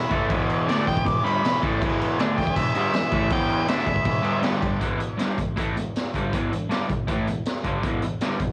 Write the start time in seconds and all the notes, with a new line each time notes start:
Already playing: E4 G#4 B4
0.10 A2 E3 A3, kick, crash
0.29 E2 B2 E3, kick, crash
0.50 crash
0.67 D3 A3 D4 D5, snare, crash
0.87 E2 B2 G5, kick, snare, crash
0.97 kick
1.05 E2 B2 D6, kick, crash
1.23 G2 D3 G3 B5, crash
1.43 E2 B2, snare, crash
1.62 A2 E3 A3, kick, crash
1.79 E2 B2 E4 G#4 B4, kick, crash
1.83 E3
2.01 crash
2.19 D3 A3 D4, snare, crash
2.38 E2 B2 G5, kick, snare, crash
2.47 kick
2.56 E2 B2 E5, kick, crash
2.75 G2 D3 G3 E5, crash
2.93 E2 B2, snare, crash
3.11 A2 E3 A3, kick, crash
3.30 E2 B2 E3 G5, kick, crash
3.50 crash
3.68 D3 A3 D4 E5, snare, crash
3.86 E2 B2, kick, crash
3.96 kick
4.05 E2 B2, kick, crash
4.22 G2 D3 G3, crash
4.41 G2 D3 G3 D4 G4 D5, snare, crash
4.62 kick, crash
4.80 E2 B2 E3, kick, closed hi-hat
4.98 E2 B2, closed hi-hat
5.17 G2 D3 G3, snare, closed hi-hat
5.38 E2 B2, kick, closed hi-hat
5.56 A2 E3 A3, kick, closed hi-hat
5.77 E2 B2, closed hi-hat
5.96 snare, closed hi-hat
6.14 G2 D3 G3, kick, closed hi-hat
6.33 E2 B2 E3, kick, closed hi-hat
6.52 E2 B2, closed hi-hat
6.69 G2 D3 G3, snare, closed hi-hat
6.89 E2 B2, kick, closed hi-hat
7.07 A2 E3 A3, kick, closed hi-hat
7.26 E2 B2, closed hi-hat
7.45 snare, closed hi-hat
7.64 G2 D3 G3, kick, closed hi-hat
7.83 E2 B2 E3, kick, closed hi-hat
8.02 E2 B2, closed hi-hat
8.21 G2 D3 G3, snare, closed hi-hat
8.39 E2 B2, kick, closed hi-hat